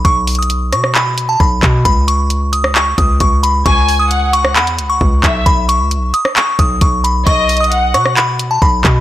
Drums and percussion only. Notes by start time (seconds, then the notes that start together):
0.05 kick, closed hi-hat
0.27 closed hi-hat, open hi-hat
0.35 closed hi-hat
0.42 closed hi-hat
0.50 closed hi-hat
0.73 cross-stick, closed hi-hat
0.84 cross-stick
0.95 clap, closed hi-hat
1.18 closed hi-hat
1.40 kick
1.63 kick, clap, closed hi-hat
1.85 kick, closed hi-hat
2.08 closed hi-hat
2.30 closed hi-hat
2.53 closed hi-hat
2.64 cross-stick
2.75 clap, closed hi-hat
2.98 kick, closed hi-hat
3.20 kick, closed hi-hat
3.44 closed hi-hat
3.66 kick, closed hi-hat
3.89 open hi-hat
4.11 closed hi-hat
4.33 closed hi-hat
4.45 cross-stick
4.56 clap, closed hi-hat
4.67 closed hi-hat
4.79 closed hi-hat
5.01 kick
5.24 kick, clap, closed hi-hat
5.46 kick, closed hi-hat
5.69 closed hi-hat
5.91 closed hi-hat
6.14 closed hi-hat
6.25 cross-stick
6.36 clap, closed hi-hat
6.59 kick, closed hi-hat
6.81 kick, closed hi-hat
7.04 closed hi-hat
7.27 kick, closed hi-hat
7.49 closed hi-hat, open hi-hat
7.57 closed hi-hat
7.64 closed hi-hat
7.72 closed hi-hat
7.94 cross-stick, closed hi-hat
8.06 cross-stick
8.17 clap, closed hi-hat
8.39 closed hi-hat
8.62 kick
8.84 kick, clap, closed hi-hat